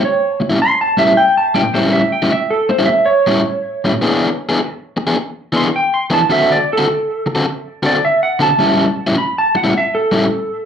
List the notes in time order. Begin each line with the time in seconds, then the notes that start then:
0.03 C#5, muted overdriven electric guitar stroke
0.40 muted overdriven electric guitar stroke
0.49 A2 G3 C#4 E4
0.59 C6, muted overdriven electric guitar stroke
0.81 A5
0.97 A2 G3 C#4 E4 E5
1.17 G5
1.38 A5
1.55 A2 G3 C#4 E4 G5
1.63 muted overdriven electric guitar stroke
1.74 A2 G3 C#4 E4 C5
1.93 E5
2.12 G5
2.22 A2 G3 C#4 E4
2.32 E5, muted overdriven electric guitar stroke
2.51 A4
2.69 C5, muted overdriven electric guitar stroke
2.79 A2 G3 C#4 E4
2.86 E5, muted overdriven electric guitar stroke
3.06 C#5
3.27 A2 G3 C#4 E4
3.85 A2 G3 C#4 E4
3.93 muted overdriven electric guitar stroke
4.01 E3 B3 D4 G#4
4.49 E3 B3 D4 G#4
4.59 muted overdriven electric guitar stroke
4.97 muted overdriven electric guitar stroke
5.07 E3 B3 D4 G#4
5.16 muted overdriven electric guitar stroke
5.53 E3 B3 D4 G#4 C6
5.76 G5
5.94 C6
6.10 E3 B3 D4 G#4 A5
6.20 muted overdriven electric guitar stroke
6.30 D3 C4 F#4 A4 E5
6.52 D5
6.73 A4
6.78 D3 C4 F#4 A4
6.87 muted overdriven electric guitar stroke
7.26 muted overdriven electric guitar stroke
7.35 D3 C4 F#4 A4
7.46 muted overdriven electric guitar stroke
7.83 D3 C4 F#4 A4 D5
8.05 E5
8.23 F#5
8.40 D3 C4 F#4 A4 A5
8.50 muted overdriven electric guitar stroke
8.59 A2 G3 C#4 E4
9.07 A2 G3 C#4 E4
9.16 B5, muted overdriven electric guitar stroke
9.38 A5
9.55 F#5, muted overdriven electric guitar stroke
9.64 A2 G3 C#4 E4
9.74 E5, muted overdriven electric guitar stroke
9.95 A4
10.12 A2 G3 C#4 E4